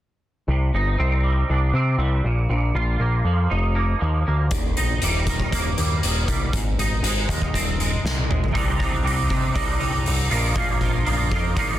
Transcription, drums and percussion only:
4.51 kick, closed hi-hat
4.77 closed hi-hat
5.02 closed hi-hat
5.27 kick, closed hi-hat
5.40 kick
5.52 kick, closed hi-hat
5.78 closed hi-hat
6.03 closed hi-hat
6.28 kick, closed hi-hat
6.53 kick, closed hi-hat
6.79 closed hi-hat
7.04 closed hi-hat
7.29 kick, closed hi-hat
7.42 kick
7.54 kick, closed hi-hat
7.80 closed hi-hat
8.06 snare
8.18 high tom
8.31 mid tom
8.44 floor tom
8.55 kick, open hi-hat
8.80 kick, open hi-hat
9.07 open hi-hat
9.30 kick, open hi-hat
9.56 kick, open hi-hat
9.81 open hi-hat
10.06 open hi-hat
10.31 open hi-hat
10.56 kick, open hi-hat
10.81 kick, open hi-hat
11.06 open hi-hat
11.32 kick, open hi-hat
11.57 kick, open hi-hat

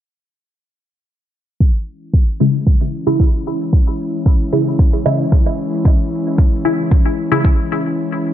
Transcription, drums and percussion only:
1.60 kick
2.14 kick
2.67 kick
3.20 kick
3.73 kick
4.26 kick
4.79 kick
5.32 kick
5.85 kick
6.38 kick
6.91 kick
7.45 kick

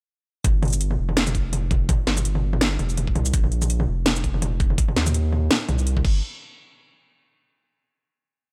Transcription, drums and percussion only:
0.44 kick, closed hi-hat, mid tom
0.63 closed hi-hat, mid tom
0.65 closed hi-hat
0.68 closed hi-hat
0.70 closed hi-hat, shaker
0.81 closed hi-hat
0.91 mid tom
1.09 mid tom
1.17 snare, closed hi-hat
1.27 mid tom, shaker
1.35 kick, closed hi-hat
1.53 closed hi-hat, mid tom
1.71 kick, closed hi-hat, mid tom
1.89 kick, closed hi-hat, mid tom
2.07 snare, closed hi-hat
2.17 mid tom, shaker
2.25 closed hi-hat
2.35 mid tom
2.53 mid tom
2.61 snare, closed hi-hat
2.79 closed hi-hat, mid tom
2.89 shaker
2.97 closed hi-hat, mid tom
3.07 kick
3.16 closed hi-hat, mid tom
3.26 shaker
3.34 kick, closed hi-hat
3.44 mid tom
3.52 closed hi-hat
3.62 mid tom, shaker
3.70 closed hi-hat
3.80 mid tom
4.06 snare, closed hi-hat, mid tom
4.16 shaker
4.24 kick, closed hi-hat
4.34 mid tom
4.42 closed hi-hat, mid tom
4.60 kick, closed hi-hat
4.70 mid tom
4.78 kick, closed hi-hat
4.88 mid tom
4.96 snare, closed hi-hat
5.06 mid tom, shaker
5.14 closed hi-hat
5.32 mid tom
5.51 snare, closed hi-hat, mid tom
5.69 closed hi-hat, mid tom
5.79 shaker
5.87 closed hi-hat
5.97 kick, mid tom
6.05 kick, crash

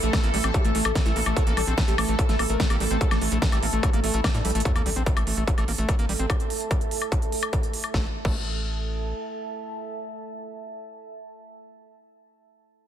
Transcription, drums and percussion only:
0.03 closed hi-hat
0.13 kick, snare, closed hi-hat, high woodblock
0.23 closed hi-hat
0.34 open hi-hat
0.44 closed hi-hat, high woodblock
0.54 kick, closed hi-hat
0.65 closed hi-hat
0.75 open hi-hat
0.85 closed hi-hat, high woodblock
0.95 kick, snare, closed hi-hat
1.06 closed hi-hat
1.16 open hi-hat
1.26 closed hi-hat, high woodblock
1.37 kick, closed hi-hat
1.47 closed hi-hat
1.57 open hi-hat, high woodblock
1.67 closed hi-hat
1.78 kick, snare, closed hi-hat
1.88 closed hi-hat
1.98 open hi-hat, high woodblock
2.09 closed hi-hat
2.19 kick, closed hi-hat
2.29 snare, closed hi-hat
2.39 open hi-hat, high woodblock
2.50 closed hi-hat
2.60 kick, snare, closed hi-hat
2.70 closed hi-hat, high woodblock
2.80 open hi-hat
2.91 closed hi-hat
3.01 kick, closed hi-hat
3.11 snare, closed hi-hat, high woodblock
3.21 open hi-hat
3.32 closed hi-hat
3.42 kick, snare, closed hi-hat
3.52 closed hi-hat, high woodblock
3.63 open hi-hat
3.73 closed hi-hat
3.83 kick, closed hi-hat, high woodblock
3.93 closed hi-hat
4.04 open hi-hat
4.14 closed hi-hat
4.24 kick, snare, closed hi-hat, high woodblock
4.34 closed hi-hat
4.45 closed hi-hat, open hi-hat
4.50 closed hi-hat
4.55 closed hi-hat
4.60 closed hi-hat
4.65 kick
4.76 closed hi-hat, high woodblock
4.86 open hi-hat
4.96 closed hi-hat
5.06 kick, closed hi-hat
5.17 closed hi-hat, high woodblock
5.27 open hi-hat
5.37 closed hi-hat
5.47 kick, closed hi-hat
5.58 closed hi-hat, high woodblock
5.68 open hi-hat
5.78 closed hi-hat
5.89 kick, closed hi-hat, high woodblock
5.99 closed hi-hat
6.09 open hi-hat
6.19 closed hi-hat
6.30 kick, closed hi-hat, high woodblock
6.40 closed hi-hat
6.50 open hi-hat
6.61 closed hi-hat
6.71 kick, closed hi-hat, high woodblock
6.81 closed hi-hat
6.91 open hi-hat
7.02 closed hi-hat, high woodblock
7.12 kick, closed hi-hat
7.22 closed hi-hat
7.32 open hi-hat
7.43 closed hi-hat, high woodblock
7.53 kick, closed hi-hat
7.63 closed hi-hat
7.74 open hi-hat
7.84 closed hi-hat, high woodblock
7.94 kick, snare
8.25 kick, crash

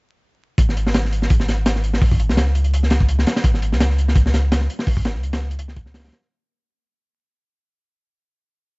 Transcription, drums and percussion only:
0.58 kick, closed hi-hat
0.69 snare
0.77 closed hi-hat
0.87 snare
0.94 snare, closed hi-hat
1.05 snare
1.12 closed hi-hat
1.22 snare
1.30 kick, closed hi-hat
1.40 snare
1.48 snare, closed hi-hat
1.66 snare, closed hi-hat
1.75 snare
1.84 closed hi-hat
1.93 snare
2.02 kick, open hi-hat
2.12 kick
2.20 closed hi-hat
2.29 snare
2.37 snare, closed hi-hat
2.47 snare
2.55 closed hi-hat
2.64 closed hi-hat
2.74 closed hi-hat
2.83 snare
2.90 snare, closed hi-hat
3.00 kick
3.08 closed hi-hat
3.19 snare
3.27 snare, closed hi-hat
3.36 snare, closed hi-hat
3.44 kick, closed hi-hat
3.54 snare
3.62 closed hi-hat
3.72 snare
3.80 snare, closed hi-hat
3.90 snare
3.98 closed hi-hat
4.08 snare
4.16 kick, closed hi-hat
4.26 snare
4.34 snare, closed hi-hat
4.52 snare, closed hi-hat
4.61 snare
4.70 closed hi-hat
4.79 snare
4.87 kick, open hi-hat
4.97 kick
5.05 snare, closed hi-hat
5.15 snare
5.23 closed hi-hat
5.33 snare, closed hi-hat
5.41 snare
5.51 closed hi-hat
5.59 closed hi-hat
5.68 snare
5.76 kick, closed hi-hat
5.86 snare
5.94 snare, closed hi-hat
6.00 snare, closed hi-hat
6.04 snare, closed hi-hat
6.08 snare, closed hi-hat
6.12 snare, closed hi-hat
6.21 snare

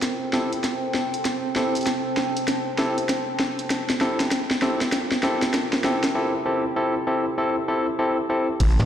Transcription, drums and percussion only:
0.02 snare, closed hi-hat
0.33 snare
0.53 closed hi-hat
0.64 snare, closed hi-hat
0.94 snare
1.14 closed hi-hat
1.25 snare, closed hi-hat
1.56 snare
1.75 closed hi-hat
1.77 closed hi-hat
1.81 closed hi-hat
1.83 closed hi-hat
1.85 snare, closed hi-hat
1.87 closed hi-hat
2.17 snare
2.37 closed hi-hat
2.48 snare, closed hi-hat
2.78 snare
2.98 closed hi-hat
3.09 snare, closed hi-hat
3.40 snare
3.59 closed hi-hat
3.70 snare, closed hi-hat
3.90 snare, closed hi-hat
4.01 snare
4.20 snare, closed hi-hat
4.31 snare, closed hi-hat
4.51 snare
4.62 snare
4.81 snare, closed hi-hat
4.92 snare, closed hi-hat
5.12 snare
5.23 snare
5.42 snare, closed hi-hat
5.54 snare, closed hi-hat
5.73 snare
5.84 snare
6.04 snare, closed hi-hat
8.60 kick, closed hi-hat, crash
8.80 snare, closed hi-hat

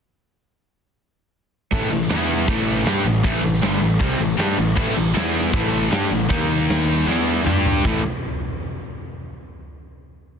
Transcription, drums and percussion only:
1.72 kick, open hi-hat
1.91 open hi-hat
2.01 snare
2.10 snare, open hi-hat
2.29 open hi-hat
2.48 kick, open hi-hat
2.67 open hi-hat
2.86 snare, open hi-hat
3.06 open hi-hat
3.24 kick, open hi-hat
3.44 open hi-hat
3.54 snare
3.62 snare, open hi-hat
3.81 open hi-hat
4.01 kick, open hi-hat
4.19 open hi-hat
4.39 snare, open hi-hat
4.59 open hi-hat
4.77 kick, crash
4.97 open hi-hat
5.16 snare, open hi-hat
5.35 open hi-hat
5.53 kick, open hi-hat
5.73 open hi-hat
5.92 snare, open hi-hat
6.11 open hi-hat
6.30 kick, open hi-hat
6.50 open hi-hat
6.61 snare
6.70 snare, open hi-hat
6.89 open hi-hat
7.09 snare
7.47 mid tom
7.66 floor tom
7.85 kick

